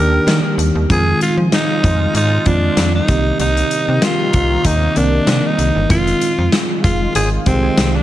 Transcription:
0.00 0.19 D#2 medium
0.00 0.89 D#3 medium
0.00 3.05 D#3 medium
0.00 0.92 A#3 medium
0.00 0.87 D4 medium
0.00 0.91 D4 medium
0.00 0.87 G4 medium
0.00 0.92 G4 medium
0.00 0.56 A#4 loud
0.27 0.40 D#3 loud
0.27 snare medium
0.27 closed hi-hat medium
0.58 0.71 D#2 medium
0.58 closed hi-hat medium
0.75 0.86 D#2 medium
0.89 1.13 F2 loud
0.89 1.90 D#3 medium
0.89 1.90 G#3 medium
0.89 3.07 G#3 medium
0.89 1.90 C4 medium
0.89 3.07 F4 medium
0.89 1.91 F4 medium
0.89 1.20 G#4 loud
0.89 kick medium
0.89 closed hi-hat medium
1.21 1.36 F4 medium
1.21 closed hi-hat medium
1.37 1.48 F3 medium
1.52 2.12 D#4 loud
1.52 snare loud
1.52 closed hi-hat medium
1.84 2.07 F2 medium
1.84 kick medium
1.84 closed hi-hat medium
2.14 2.38 G#2 loud
2.14 2.49 D#4 loud
2.14 closed hi-hat loud
2.46 2.69 F2 medium
2.46 3.07 D#3 medium
2.46 3.09 G#3 medium
2.46 3.08 C4 medium
2.46 2.95 D4 medium
2.46 3.09 F4 medium
2.46 kick medium
2.46 closed hi-hat medium
2.77 3.01 F2 loud
2.77 snare medium
2.77 closed hi-hat medium
2.95 3.37 D#4 medium
3.08 3.32 C2 medium
3.08 5.87 C3 medium
3.08 4.09 D#3 medium
3.08 5.87 D#3 medium
3.08 4.09 A#3 medium
3.08 5.87 A#3 medium
3.08 4.09 C4 medium
3.08 4.10 G4 medium
3.08 kick medium
3.08 closed hi-hat medium
3.40 3.63 C2 loud
3.40 4.05 D#4 loud
3.40 closed hi-hat medium
3.57 closed hi-hat soft
3.71 closed hi-hat medium
3.88 3.99 C3 medium
4.02 4.68 F4 medium
4.02 snare loud
4.02 closed hi-hat medium
4.33 4.57 C2 medium
4.33 kick medium
4.33 closed hi-hat medium
4.65 4.88 D#2 loud
4.65 4.99 D#4 loud
4.65 kick medium
4.65 closed hi-hat loud
4.96 5.20 C2 medium
4.96 5.72 D#3 medium
4.96 5.72 A#3 medium
4.96 5.73 C4 medium
4.96 5.48 D4 medium
4.96 5.73 A#4 medium
4.96 closed hi-hat medium
5.27 5.40 C3 loud
5.27 snare medium
5.27 closed hi-hat medium
5.46 5.90 D#4 medium
5.58 5.71 C2 medium
5.58 closed hi-hat medium
5.76 5.86 G1 medium
5.89 6.13 F1 loud
5.89 6.90 D#3 medium
5.89 8.03 D#3 medium
5.89 6.90 G#3 medium
5.89 8.03 G#3 medium
5.89 6.91 C4 medium
5.89 6.91 F4 medium
5.89 8.03 F4 medium
5.89 6.54 F4 loud
5.89 kick medium
5.89 closed hi-hat medium
6.07 closed hi-hat soft
6.21 closed hi-hat medium
6.38 6.49 F2 medium
6.52 snare loud
6.52 closed hi-hat medium
6.84 7.07 F1 medium
6.84 7.13 F4 medium
6.84 kick medium
6.84 closed hi-hat medium
7.15 7.39 G#1 medium
7.15 7.30 G#4 medium
7.15 closed hi-hat loud
7.46 7.70 C2 medium
7.46 8.03 D#3 medium
7.46 8.03 G#3 medium
7.46 8.03 C4 medium
7.46 7.97 C4 medium
7.46 7.54 G4 medium
7.46 kick medium
7.46 closed hi-hat medium
7.54 8.03 G#4 medium
7.78 8.01 C2 loud
7.78 snare loud
7.78 closed hi-hat medium
7.96 8.03 D4 medium

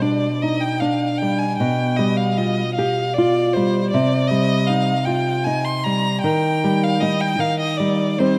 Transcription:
0.00 1.57 B2 soft
0.00 0.27 G3 soft
0.00 0.66 D4 soft
0.00 0.44 D5 soft
0.42 0.83 D#4 soft
0.42 0.62 D#5 soft
0.60 0.82 G5 medium
0.80 1.44 D4 soft
0.80 1.20 F5 soft
1.18 1.40 G5 medium
1.22 1.61 G3 soft
1.39 1.57 G#5 soft
1.57 3.90 B2 soft
1.57 1.98 G5 soft
1.97 2.62 G3 soft
1.97 2.19 D#5 soft
2.17 2.39 F5 soft
2.38 3.01 F4 soft
2.38 2.74 D#5 soft
2.75 3.17 G4 soft
2.75 3.15 F5 medium
3.14 3.55 D5 medium
3.18 3.79 F4 soft
3.53 3.95 G3 soft
3.53 3.90 C5 medium
3.90 6.19 C3 soft
3.90 4.29 D5 medium
4.28 4.92 G3 soft
4.28 4.68 D#5 medium
4.67 5.31 D#4 soft
4.67 5.07 F5 medium
5.06 5.46 F4 soft
5.06 5.46 G5 medium
5.44 6.07 D#4 soft
5.44 5.66 G#5 medium
5.65 5.85 C6 medium
5.84 6.23 G3 soft
5.84 6.22 A#5 medium
6.22 7.35 D#3 soft
6.22 6.85 G5 medium
6.64 7.01 G3 soft
6.83 7.02 F5 medium
7.00 7.35 G3 soft
7.00 7.35 D#4 soft
7.00 7.22 D#5 medium
7.21 7.42 G5 medium
7.39 8.39 D#3 soft
7.39 7.59 F5 medium
7.60 7.79 D#5 medium
7.77 8.19 G3 soft
7.77 8.21 D5 medium
8.19 8.39 G3 soft
8.19 8.39 C4 soft
8.19 8.39 C5 medium

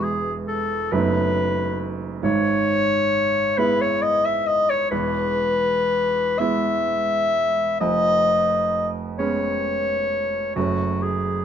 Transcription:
0.00 0.88 E1 medium
0.00 0.88 E2 medium
0.00 0.89 G#3 soft
0.00 0.89 B3 soft
0.00 0.89 E4 soft
0.00 0.35 G#4 medium
0.48 0.94 A4 medium
0.92 2.19 F#1 medium
0.92 2.19 F#2 medium
0.92 2.19 A3 medium
0.92 2.19 B3 medium
0.92 2.20 D#4 medium
0.92 1.97 B4 loud
2.23 4.87 G#1 medium
2.23 4.87 G#2 medium
2.23 3.60 C#5 loud
3.58 4.87 G#3 medium
3.58 4.88 B3 medium
3.58 4.88 E4 medium
3.58 3.83 B4 loud
3.82 4.04 C#5 medium
4.02 4.27 D#5 loud
4.25 4.48 E5 loud
4.47 4.71 D#5 loud
4.70 4.90 C#5 loud
4.91 7.76 E1 medium
4.91 7.76 E2 medium
4.91 6.40 B4 loud
6.39 7.76 G#3 medium
6.39 7.77 B3 medium
6.39 7.77 E4 medium
6.39 7.80 E5 loud
7.80 10.53 F1 medium
7.80 10.53 F2 medium
7.80 8.88 D#5 loud
9.18 10.52 G#3 medium
9.18 10.53 B3 medium
9.18 10.53 C#4 medium
9.18 10.52 C#5 medium
10.55 11.45 F#1 medium
10.55 11.45 F#2 medium
10.55 11.45 F#3 soft
10.55 11.45 A3 soft
10.55 11.45 C#4 soft
10.55 11.04 F#4 medium
11.02 11.45 G#4 medium

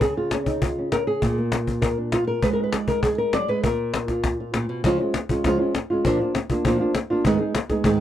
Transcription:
0.01 1.21 C#3 medium
0.01 0.16 G#4 loud
0.01 cajon bass loud
0.17 0.32 F4 medium
0.31 0.46 C#4 medium
0.31 cajon slap loud
0.46 0.62 D#4 medium
0.46 cajon bass medium
0.62 0.92 F4 medium
0.62 cajon bass loud
0.78 1.21 C#4 medium
0.92 1.07 A#4 loud
0.92 cajon slap medium
1.07 1.37 G#4 loud
1.22 2.42 A#2 medium
1.22 cajon bass loud
1.38 2.41 A#3 soft
1.52 cajon slap loud
1.67 1.81 F4 soft
1.67 cajon bass medium
1.82 1.97 A#4 medium
1.82 cajon bass loud
1.97 2.12 D4 medium
2.12 2.27 F4 medium
2.12 cajon slap medium
2.27 2.43 A#4 loud
2.43 3.47 G#3 medium
2.43 2.53 B4 loud
2.43 cajon bass loud
2.53 2.63 A#4 medium
2.59 3.62 D#4 medium
2.59 2.73 B4 medium
2.73 2.88 D5 loud
2.73 cajon slap loud
2.88 3.03 A#4 loud
2.88 cajon bass medium
3.03 3.18 G#4 medium
3.03 cajon bass loud
3.18 3.33 A#4 loud
3.33 3.48 F#3 medium
3.33 3.48 D5 loud
3.33 cajon slap medium
3.48 3.63 G#3 medium
3.48 3.64 B4 loud
3.64 4.53 A#2 medium
3.64 4.24 A#4 loud
3.64 cajon bass loud
3.94 cajon slap loud
4.08 4.39 F4 medium
4.08 cajon bass medium
4.08 cajon slap soft
4.24 cajon bass loud
4.24 cajon slap soft
4.40 4.85 F4 medium
4.54 4.69 A#2 medium
4.54 cajon slap medium
4.69 4.84 B2 medium
4.84 4.98 C#3 medium
4.84 4.99 F3 medium
4.84 4.99 G#3 medium
4.84 4.99 C#4 loud
4.84 4.98 F4 medium
4.84 cajon bass loud
4.99 5.14 G#3 soft
4.99 5.14 C#4 medium
4.99 5.14 F4 medium
5.14 muted nylon-string guitar stroke medium
5.14 cajon slap loud
5.29 5.45 G#3 medium
5.29 5.45 C#4 medium
5.29 5.44 F4 medium
5.29 cajon bass medium
5.44 5.59 C#3 medium
5.44 5.59 F3 medium
5.44 5.59 G#3 medium
5.44 5.59 C#4 medium
5.44 5.58 F4 loud
5.44 cajon bass loud
5.44 cajon slap soft
5.60 5.74 G#3 medium
5.60 5.74 C#4 medium
5.60 5.74 F4 medium
5.75 muted nylon-string guitar stroke medium
5.75 cajon slap loud
5.90 6.05 G#3 medium
5.90 6.05 C#4 medium
5.90 6.04 F4 medium
6.04 6.19 A#2 medium
6.04 6.19 F3 medium
6.04 6.19 A#3 loud
6.04 6.20 D4 loud
6.04 6.19 F4 medium
6.04 cajon bass loud
6.20 6.35 A#3 medium
6.20 6.35 D4 medium
6.20 6.34 F4 medium
6.35 muted nylon-string guitar stroke medium
6.35 cajon slap loud
6.50 6.65 A#3 medium
6.50 6.65 D4 medium
6.50 6.64 F4 medium
6.50 cajon bass medium
6.65 6.79 A#2 medium
6.65 6.79 F3 medium
6.65 6.80 A#3 medium
6.65 6.79 D4 loud
6.65 6.78 F4 loud
6.65 cajon bass loud
6.80 6.94 A#3 soft
6.80 6.94 D4 medium
6.80 6.94 F4 medium
6.95 muted nylon-string guitar stroke medium
6.95 cajon slap loud
7.10 7.25 A#3 medium
7.10 7.25 D4 medium
7.10 7.24 F4 medium
7.25 7.39 G#2 loud
7.25 7.40 D#3 medium
7.25 7.40 G#3 medium
7.25 7.40 B3 medium
7.25 7.39 D#4 loud
7.25 7.38 G#4 medium
7.25 cajon bass medium
7.39 7.54 G#3 medium
7.39 7.54 B3 soft
7.39 7.54 D#4 medium
7.39 7.54 G#4 medium
7.55 muted nylon-string guitar stroke medium
7.55 cajon slap loud
7.70 7.84 G#3 soft
7.70 7.84 B3 medium
7.70 7.85 D#4 medium
7.70 7.84 G#4 medium
7.70 cajon bass medium
7.70 cajon slap soft
7.84 7.99 G#2 medium
7.84 7.99 D#3 loud
7.84 8.00 G#3 loud
7.84 8.00 B3 loud
7.84 7.99 D#4 medium
7.84 7.98 G#4 loud
7.84 cajon bass loud

